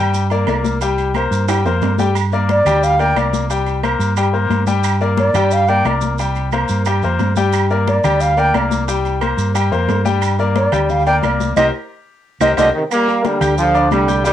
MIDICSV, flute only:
0, 0, Header, 1, 2, 480
1, 0, Start_track
1, 0, Key_signature, -2, "minor"
1, 0, Tempo, 336134
1, 1157, Time_signature, 4, 2, 24, 8
1, 20462, End_track
2, 0, Start_track
2, 0, Title_t, "Flute"
2, 0, Program_c, 0, 73
2, 3575, Note_on_c, 0, 74, 83
2, 4049, Note_on_c, 0, 77, 92
2, 4071, Note_off_c, 0, 74, 0
2, 4280, Note_on_c, 0, 79, 108
2, 4302, Note_off_c, 0, 77, 0
2, 4518, Note_off_c, 0, 79, 0
2, 7413, Note_on_c, 0, 74, 74
2, 7896, Note_on_c, 0, 77, 94
2, 7918, Note_off_c, 0, 74, 0
2, 8122, Note_on_c, 0, 79, 109
2, 8144, Note_off_c, 0, 77, 0
2, 8359, Note_off_c, 0, 79, 0
2, 11248, Note_on_c, 0, 74, 66
2, 11723, Note_on_c, 0, 77, 90
2, 11744, Note_off_c, 0, 74, 0
2, 11980, Note_on_c, 0, 79, 110
2, 12002, Note_off_c, 0, 77, 0
2, 12209, Note_off_c, 0, 79, 0
2, 15090, Note_on_c, 0, 74, 70
2, 15569, Note_on_c, 0, 77, 84
2, 15590, Note_off_c, 0, 74, 0
2, 15790, Note_off_c, 0, 77, 0
2, 15799, Note_on_c, 0, 79, 101
2, 15943, Note_off_c, 0, 79, 0
2, 16512, Note_on_c, 0, 75, 102
2, 16669, Note_off_c, 0, 75, 0
2, 17730, Note_on_c, 0, 75, 90
2, 17880, Note_off_c, 0, 75, 0
2, 17970, Note_on_c, 0, 75, 110
2, 18119, Note_off_c, 0, 75, 0
2, 20462, End_track
0, 0, End_of_file